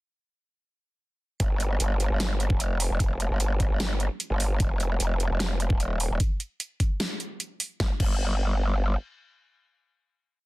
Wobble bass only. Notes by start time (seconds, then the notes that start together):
1.40 G1
1.80 G1
2.10 G1
2.50 F1
2.90 F1
3.30 G1
3.70 G1
4.30 G1
4.60 F1
5.00 F1
5.30 F1
5.70 D#1
6.10 D#1
7.80 G1
8.00 G1